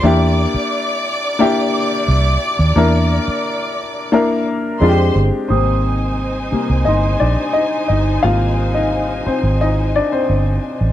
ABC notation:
X:1
M:4/4
L:1/16
Q:1/4=88
K:Ablyd
V:1 name="Celesta"
c'2 z8 d'6- | d'6 z8 z2 | e'8 c'8- | c'4 z12 |]
V:2 name="String section"
[dd']16- | [dd']8- [dd']2 z2 [cc']2 z2 | [Eca]16- | [Eca]16 |]
V:3 name="Grand piano"
[B,D=EG]6 z2 [B,DEG]6 z2 | [B,D=EB]6 z2 [B,DEB]4 [A,CDFG]4 | [Cc]8 [Ee]2 [Dd]2 [Ee]2 [Ee]2 | [Ff]3 [Ee]3 [Cc]2 [Ee]2 [Dd] [Cc]3 z2 |]
V:4 name="Grand piano" clef=bass
z16 | z16 | [C,G,B,]6 [C,G,B,]2 z8 | [C,G,B,]16 |]
V:5 name="Fingered electric bass" clef=bass
=E,,3 z8 z C,,2 z _E,, | =E,,3 z8 z F,,2 G,,, z | A,,,6 z C,, G,,,2 B,,, z3 G,,,2 | A,,,6 z A,,,4 z G,,,2 z =A,,, |]